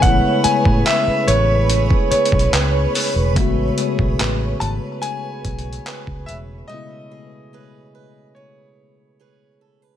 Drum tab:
HH |x-----x-----x-----x-----x-----x-x-x-x-----o-----|x-----x-----x-----x-----x-----x-x-x-x-----x-----|------------------------------------------------|
CP |------------x-----------------------x-----------|------------x-----------------------x-----------|------------------------------------------------|
BD |o--------o-----------------o-----o--------------|o--------o--------------------o--------o--------|------------------------------------------------|